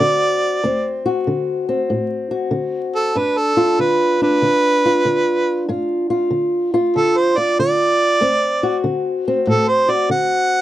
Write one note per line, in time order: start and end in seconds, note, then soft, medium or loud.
0.00 0.59 D3 medium
0.00 0.61 C4 medium
0.00 0.61 F#4 medium
0.00 1.02 D5 loud
0.64 1.22 D2 medium
0.64 1.67 C4 medium
1.06 2.30 F#4 medium
1.27 1.85 D3 medium
1.69 3.14 C4 medium
1.90 2.48 A2 medium
2.31 3.13 F#4 medium
2.51 3.11 D3 medium
2.95 3.19 A4 medium
3.15 3.74 G2 medium
3.15 4.21 D4 medium
3.15 3.39 B4 medium
3.37 3.82 A4 medium
3.57 4.83 F4 medium
3.79 4.38 D3 medium
3.79 4.21 B4 medium
4.22 7.72 D4 medium
4.22 5.66 B4 loud
4.42 5.01 D3 medium
4.85 5.67 F4 medium
5.05 5.64 D3 medium
5.68 6.27 G2 medium
5.68 6.09 F4 medium
6.10 6.73 F4 medium
6.31 6.90 D3 medium
6.74 7.36 F4 medium
6.96 7.54 D3 medium
6.96 7.19 A4 medium
7.17 7.40 C5 medium
7.37 8.19 F4 medium
7.37 7.58 D5 medium
7.59 8.17 D3 medium
7.59 8.81 D5 loud
8.21 8.80 D2 medium
8.21 9.27 C4 medium
8.63 9.87 F#4 medium
8.84 9.43 D3 medium
9.28 10.62 C4 medium
9.47 10.06 A2 medium
9.47 9.70 A4 medium
9.68 9.93 C5 medium
9.89 10.62 F#4 medium
9.89 10.11 D5 medium
10.10 10.62 D3 medium
10.10 10.62 F#5 medium